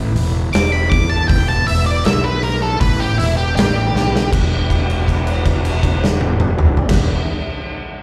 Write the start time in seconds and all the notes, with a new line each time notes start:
Already playing: A1 E4 G4 B4
0.15 E1, open hi-hat
0.53 E1 D6, snare, open hi-hat
0.72 B5
0.90 E2 D6, kick, open hi-hat
1.10 A5
1.28 E1 B3 E4 G4 B4 G5, kick, open hi-hat
1.48 A5
1.67 E1 E5, open hi-hat
1.86 D5
2.05 B1 E5, snare, open hi-hat
2.24 B4
2.43 A#4, open hi-hat
2.62 A4
2.80 A1 B4, kick, open hi-hat
3.00 G4
3.18 E1 E4, open hi-hat
3.37 G4
3.56 A1 G4, snare, open hi-hat
3.95 B1, snare
4.16 snare
4.33 E1 D4 F#4 G4 B4, kick, crash
4.70 kick, crash
4.90 crash
5.08 kick, crash
5.27 crash
5.46 kick, crash
5.65 crash
5.83 kick, crash
6.04 snare
6.21 high tom
6.40 mid tom
6.58 mid tom
6.77 floor tom
6.89 E1 D4 F#4 G4 B4, kick, snare, crash